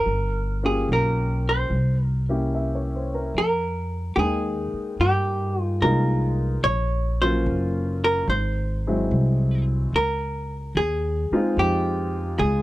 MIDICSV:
0, 0, Header, 1, 5, 480
1, 0, Start_track
1, 0, Tempo, 821918
1, 35, Time_signature, 4, 2, 24, 8
1, 7371, End_track
2, 0, Start_track
2, 0, Title_t, "Hollow-body jazz guitar"
2, 0, Program_c, 0, 26
2, 0, Note_on_c, 0, 70, 68
2, 381, Note_off_c, 0, 70, 0
2, 384, Note_on_c, 0, 68, 50
2, 519, Note_off_c, 0, 68, 0
2, 542, Note_on_c, 0, 70, 55
2, 868, Note_off_c, 0, 70, 0
2, 870, Note_on_c, 0, 72, 62
2, 1191, Note_off_c, 0, 72, 0
2, 1191, Note_on_c, 0, 70, 62
2, 1315, Note_off_c, 0, 70, 0
2, 1974, Note_on_c, 0, 70, 63
2, 2429, Note_on_c, 0, 67, 55
2, 2434, Note_off_c, 0, 70, 0
2, 2445, Note_off_c, 0, 67, 0
2, 2448, Note_on_c, 0, 68, 63
2, 2900, Note_off_c, 0, 68, 0
2, 2924, Note_on_c, 0, 67, 70
2, 3281, Note_off_c, 0, 67, 0
2, 3281, Note_on_c, 0, 65, 70
2, 3400, Note_on_c, 0, 70, 66
2, 3416, Note_off_c, 0, 65, 0
2, 3856, Note_off_c, 0, 70, 0
2, 3877, Note_on_c, 0, 73, 90
2, 4212, Note_off_c, 0, 73, 0
2, 4214, Note_on_c, 0, 72, 70
2, 4695, Note_off_c, 0, 72, 0
2, 4698, Note_on_c, 0, 70, 79
2, 4843, Note_off_c, 0, 70, 0
2, 4845, Note_on_c, 0, 72, 70
2, 5627, Note_off_c, 0, 72, 0
2, 5815, Note_on_c, 0, 70, 74
2, 6262, Note_off_c, 0, 70, 0
2, 6290, Note_on_c, 0, 68, 72
2, 6767, Note_off_c, 0, 68, 0
2, 6770, Note_on_c, 0, 67, 69
2, 7236, Note_off_c, 0, 67, 0
2, 7238, Note_on_c, 0, 68, 73
2, 7371, Note_off_c, 0, 68, 0
2, 7371, End_track
3, 0, Start_track
3, 0, Title_t, "Upright piano"
3, 0, Program_c, 1, 0
3, 0, Control_c, 1, 64, 127
3, 43, Control_c, 1, 64, 0
3, 141, Control_c, 1, 64, 127
3, 366, Note_on_c, 1, 58, 40
3, 369, Note_on_c, 1, 61, 37
3, 371, Note_on_c, 1, 65, 32
3, 374, Note_on_c, 1, 67, 44
3, 995, Note_off_c, 1, 58, 0
3, 997, Note_off_c, 1, 61, 0
3, 998, Note_off_c, 1, 65, 0
3, 999, Note_off_c, 1, 67, 0
3, 1003, Control_c, 1, 64, 0
3, 1116, Control_c, 1, 64, 127
3, 1337, Note_on_c, 1, 58, 39
3, 1338, Note_on_c, 1, 64, 41
3, 1339, Note_on_c, 1, 61, 37
3, 1343, Note_on_c, 1, 67, 43
3, 1486, Note_on_c, 1, 76, 31
3, 1606, Note_on_c, 1, 73, 32
3, 1713, Note_off_c, 1, 76, 0
3, 1725, Note_on_c, 1, 72, 34
3, 1812, Note_off_c, 1, 73, 0
3, 1836, Note_on_c, 1, 70, 42
3, 1868, Note_off_c, 1, 72, 0
3, 1963, Note_off_c, 1, 58, 0
3, 1964, Note_off_c, 1, 64, 0
3, 1965, Note_off_c, 1, 61, 0
3, 1965, Control_c, 1, 64, 0
3, 1967, Note_off_c, 1, 67, 0
3, 2005, Note_off_c, 1, 70, 0
3, 2076, Control_c, 1, 64, 127
3, 2431, Note_on_c, 1, 56, 46
3, 2433, Note_on_c, 1, 58, 40
3, 2439, Note_on_c, 1, 63, 37
3, 2443, Note_on_c, 1, 79, 46
3, 2732, Note_off_c, 1, 56, 0
3, 2733, Note_off_c, 1, 58, 0
3, 2736, Note_off_c, 1, 63, 0
3, 2738, Note_off_c, 1, 79, 0
3, 3396, Note_on_c, 1, 56, 51
3, 3399, Note_on_c, 1, 58, 42
3, 3401, Note_on_c, 1, 63, 46
3, 3403, Note_on_c, 1, 65, 54
3, 3695, Note_off_c, 1, 56, 0
3, 3696, Note_off_c, 1, 58, 0
3, 3697, Note_off_c, 1, 63, 0
3, 3698, Note_off_c, 1, 65, 0
3, 3885, Control_c, 1, 64, 0
3, 3990, Control_c, 1, 64, 127
3, 4216, Note_on_c, 1, 61, 47
3, 4217, Note_on_c, 1, 54, 48
3, 4217, Note_on_c, 1, 58, 52
3, 4220, Note_on_c, 1, 65, 60
3, 4347, Note_off_c, 1, 58, 0
3, 4347, Note_off_c, 1, 61, 0
3, 4348, Note_off_c, 1, 54, 0
3, 4349, Note_off_c, 1, 65, 0
3, 4844, Control_c, 1, 64, 0
3, 4958, Control_c, 1, 64, 127
3, 5181, Note_on_c, 1, 56, 46
3, 5182, Note_on_c, 1, 54, 48
3, 5183, Note_on_c, 1, 60, 46
3, 5185, Note_on_c, 1, 64, 52
3, 5773, Note_off_c, 1, 56, 0
3, 5774, Note_off_c, 1, 54, 0
3, 5774, Note_off_c, 1, 60, 0
3, 5775, Note_off_c, 1, 64, 0
3, 5804, Control_c, 1, 64, 0
3, 5918, Control_c, 1, 64, 127
3, 6613, Note_on_c, 1, 60, 55
3, 6615, Note_on_c, 1, 56, 63
3, 6616, Note_on_c, 1, 65, 66
3, 6618, Note_on_c, 1, 63, 53
3, 6744, Note_off_c, 1, 60, 0
3, 6745, Note_off_c, 1, 56, 0
3, 6746, Note_off_c, 1, 63, 0
3, 6746, Note_off_c, 1, 65, 0
3, 7371, End_track
4, 0, Start_track
4, 0, Title_t, "Upright bass"
4, 0, Program_c, 2, 32
4, 34, Note_on_c, 2, 31, 54
4, 491, Note_off_c, 2, 31, 0
4, 516, Note_on_c, 2, 35, 55
4, 972, Note_off_c, 2, 35, 0
4, 992, Note_on_c, 2, 36, 57
4, 1933, Note_off_c, 2, 36, 0
4, 1953, Note_on_c, 2, 41, 55
4, 2421, Note_off_c, 2, 41, 0
4, 2433, Note_on_c, 2, 39, 62
4, 2743, Note_off_c, 2, 39, 0
4, 2916, Note_on_c, 2, 43, 66
4, 3383, Note_off_c, 2, 43, 0
4, 3397, Note_on_c, 2, 36, 75
4, 3863, Note_off_c, 2, 36, 0
4, 3873, Note_on_c, 2, 34, 57
4, 4341, Note_off_c, 2, 34, 0
4, 4357, Note_on_c, 2, 30, 71
4, 4823, Note_off_c, 2, 30, 0
4, 4833, Note_on_c, 2, 32, 67
4, 5300, Note_off_c, 2, 32, 0
4, 5320, Note_on_c, 2, 36, 73
4, 5783, Note_off_c, 2, 36, 0
4, 5797, Note_on_c, 2, 37, 62
4, 6262, Note_off_c, 2, 37, 0
4, 6277, Note_on_c, 2, 39, 70
4, 6583, Note_off_c, 2, 39, 0
4, 6755, Note_on_c, 2, 41, 68
4, 7220, Note_off_c, 2, 41, 0
4, 7237, Note_on_c, 2, 37, 74
4, 7371, Note_off_c, 2, 37, 0
4, 7371, End_track
5, 0, Start_track
5, 0, Title_t, "Muted upright bass strokes"
5, 2763, Note_on_c, 9, 29, 28
5, 2822, Note_off_c, 9, 29, 0
5, 6606, Note_on_c, 9, 29, 33
5, 6665, Note_off_c, 9, 29, 0
5, 7371, End_track
0, 0, End_of_file